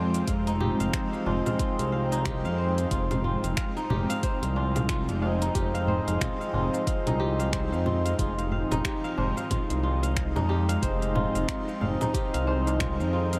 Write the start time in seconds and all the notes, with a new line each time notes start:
Already playing: F2 F3 G#3 C4 D#4 F4 G4 C5 F5 G5
0.14 F5, closed hi-hat, tabla tin, shaker
0.26 F1 F3 G#3 C4 D#4 F5, kick, closed hi-hat, shaker
0.47 D#4, closed hi-hat, shaker
0.60 G4, low conga, tabla ge
0.80 F1 F5, closed hi-hat, tabla tin, shaker
0.93 C5, finger snap, kick, closed hi-hat, shaker
1.13 F5, shaker
1.26 F1 F4, tabla na, tabla tin, tabla ge
1.46 F5, low conga, shaker
1.59 F4, kick, closed hi-hat, shaker
1.79 C2 F5, closed hi-hat, shaker
1.92 F5, tabla na, tabla tin
2.12 D#4, closed hi-hat, tabla na, shaker
2.25 G4, finger snap, kick, closed hi-hat, low conga, shaker
2.45 F2 F5, shaker
2.58 C5
2.78 F5, closed hi-hat, shaker
2.90 F1 F3 G#3 C4 D#4 F4 G#4, kick, closed hi-hat, shaker
3.11 F5, closed hi-hat, low conga, shaker
3.24 F4, tabla ge
3.43 F1 F5, closed hi-hat, tabla tin, shaker
3.57 F5, finger snap, kick, closed hi-hat, shaker
3.77 D#4, shaker
3.90 F1 G4, tabla na, tabla tin, tabla ge, low conga
4.10 F5, closed hi-hat, shaker
4.23 C5, kick, closed hi-hat, shaker
4.42 C2 F5, closed hi-hat, shaker
4.56 F4, tabla na
4.75 F5, closed hi-hat, low conga, shaker
4.89 F4, finger snap, kick, closed hi-hat, shaker
5.08 F1 F5, closed hi-hat, tabla na, shaker
5.21 F3 G#3 C4 D#4 G#4 F5, tabla na
5.41 D#4, closed hi-hat, tabla tin, shaker
5.53 F1 F3 G#3 C4 D#4 G4, kick, closed hi-hat, shaker
5.74 F5, closed hi-hat, shaker
5.87 C5, tabla ge
6.07 F1 F5, closed hi-hat, tabla tin, shaker
6.21 F4, finger snap, kick, closed hi-hat, low conga, shaker
6.41 F5, shaker
6.53 F1 F4, tabla na, tabla tin, tabla ge
6.74 F5, shaker
6.87 F5, kick, closed hi-hat, shaker
7.06 C2 D#4, closed hi-hat, low conga, shaker
7.19 G4, tabla na, tabla tin
7.39 F5, closed hi-hat, tabla na, shaker
7.52 C5, finger snap, kick, closed hi-hat, shaker
7.72 F2 F5, shaker
7.86 F4, low conga
8.05 F5, closed hi-hat, shaker
8.18 F1 F3 G#3 C4 D#4 F4 G#4, kick, closed hi-hat, shaker
8.38 F5, closed hi-hat, shaker
8.51 F5, tabla ge
8.71 F1 D#4, closed hi-hat, low conga, shaker
8.85 G4, finger snap, kick, closed hi-hat, shaker
9.04 F5, shaker
9.18 F1 C5, tabla na, tabla tin, tabla ge
9.37 F5, shaker
9.50 F4, kick, closed hi-hat, low conga, shaker
9.70 C2 F5, closed hi-hat, tabla tin, shaker
9.83 F4, tabla na
10.03 F5, closed hi-hat, tabla tin, shaker
10.16 F5, finger snap, kick, closed hi-hat, shaker
10.36 F2 D#4, tabla na, low conga, shaker
10.49 G4, tabla na
10.69 F5, closed hi-hat, tabla tin, shaker
10.80 F1 F3 G#3 C4 D#4 C5, kick, closed hi-hat, shaker
11.02 F5, closed hi-hat, shaker
11.15 F4, tabla ge, low conga
11.35 F1 F5, closed hi-hat, tabla tin, shaker
11.48 F4, finger snap, kick, closed hi-hat, shaker
11.68 F5, shaker
11.81 F1 F5, tabla na, tabla tin, tabla ge
12.01 D#4, low conga, shaker
12.14 G4, kick, closed hi-hat, shaker
12.34 C2 F5, closed hi-hat, shaker
12.47 C5, tabla na, tabla tin
12.67 F5, closed hi-hat, tabla na, shaker
12.80 F4, finger snap, kick, closed hi-hat, low conga, shaker
13.00 F2 F5, shaker
13.13 F4
13.33 F5, closed hi-hat, shaker